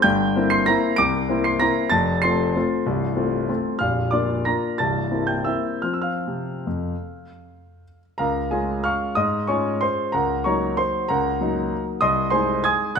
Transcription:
0.02 G1 G2 G5 G6
0.36 A#3 C4 E4
0.50 C6 C7
0.66 A#3 C4 E4 A#5 A#6
0.96 C2 C3 D6 D7
1.29 A#3 C4 E4
1.44 C6 C7
1.60 A#3 C4 E4 A#5 A#6
1.90 F1 F2 A5 A6
2.22 A3 C4 F4 C6 C7
2.56 A3 C4 F4
2.86 C1 C2
3.16 A3 C4 F4
3.49 A3 C4 F4
3.79 A#0 A#1 F5 F6
4.11 A#3 D4 F4 D5 D6
4.45 A#3 D4 F4 A#5 A#6
4.78 C1 C2 A5 A6
5.11 A#3 C4 E4
5.27 G5 G6
5.44 A#3 C4 E4 E5 E6
5.82 F3 C4 F4 F6
5.94 E6
6.02 F5 F6
6.27 C3
6.67 F2
8.18 C#2 A#4 F5 A#5
8.51 G#3 C#4 F4 G#4 F5 G#5
8.84 F5 C#6 F6
9.15 G#2 D#5 D#6
9.47 G#3 C#4 F4 C#5 G#5 C#6
9.81 C5 C6
10.12 C#2 A#4 F#5 A#5
10.44 F#3 A#3 D#4 C#5 A#5 C#6
10.77 C5 C6
11.09 C#2 A#4 F#5 A#5
11.41 F#3 A#3 D#4
12.01 C2 D#5 C6 D#6
12.30 G#3 D#4 C5 G#5 C6
12.64 G#5 D#6 G#6
12.95 F#5 F#6

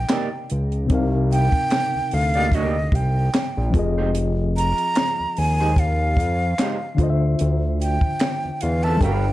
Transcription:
Already playing: C3 C4 D#4 A#4 D#5 G5
0.09 A#3 D#4 G4 D5, snare, clap, closed hi-hat
0.50 C#2, closed hi-hat
0.72 closed hi-hat
0.86 C3 C4, kick, closed hi-hat
0.90 C2 D#4 A#4
0.95 F5
1.32 G5, closed hi-hat
1.52 kick, closed hi-hat
1.70 snare, clap, closed hi-hat
1.95 D2
2.11 D2 F5, open hi-hat
2.34 A#3 D#4 G4 D5, closed hi-hat
2.52 A#3 D#4 G4 D5 D#5, kick, closed hi-hat
2.92 C2 G5, kick, closed hi-hat
3.34 snare, clap, closed hi-hat
3.57 A#1
3.70 F3 C4, kick
3.75 F1 F4 G#4, closed hi-hat
3.79 D#5
3.98 G#3 D#4 G4 C5
4.15 closed hi-hat
4.57 A#5, closed hi-hat
4.78 closed hi-hat
4.95 snare, clap, closed hi-hat
5.20 D#2
5.37 D#2 G#5, open hi-hat
5.61 G#3 D#4 G4 C5
5.76 F5, kick, closed hi-hat
6.17 F2, kick, closed hi-hat
6.58 G#3 D#4 G4 C5, snare, clap, closed hi-hat
6.95 D3 D4, kick
6.99 D2 F4 C5, closed hi-hat
7.03 D#5
7.10 E5
7.39 D2, closed hi-hat
7.82 G5, closed hi-hat
8.01 kick
8.19 snare, clap, closed hi-hat
8.45 E2
8.61 E2 F5, closed hi-hat
8.83 C4 F4 A4 E5 A5
8.97 G3 D4, kick
9.01 G1 D4 G4 A4 B4 F5 G5, closed hi-hat
9.06 F5

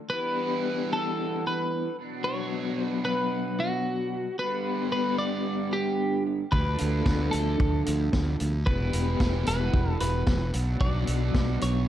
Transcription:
Already playing: F3 A3 D4 F4 A4
0.10 E3 G3 B3 D4 E4 G4 B4
0.93 A4
1.47 B4
1.99 B2 F#3 B3 D4 F#4
2.24 C#5
2.85 B4
3.05 B4
3.60 F#4
4.39 G2 D3 G3 B3 D4 G4 B4
4.92 B4
5.18 D5
5.73 G4
6.51 D2 D3 F3 A3 D4 B4, kick
6.56 A4
6.78 D2, closed hi-hat
7.06 D2, kick, snare
7.31 D2 A4, closed hi-hat
7.60 D2, kick
7.86 D2, closed hi-hat
8.13 D2, kick, snare
8.40 D2, closed hi-hat
8.65 E1 E3 G3 B3 D4 E4 G4 B4, kick
8.93 E1, closed hi-hat
9.20 E1, kick, snare
9.46 E1 B4, closed hi-hat
9.74 E1, kick
10.00 E1 B4, closed hi-hat
10.27 E1, kick, snare
10.52 B1 B2 F#3 B3 D4, closed hi-hat
10.57 F#4
10.80 B1 D5, kick
11.07 B1, closed hi-hat
11.34 B1, kick, snare
11.61 B1 C#5, closed hi-hat

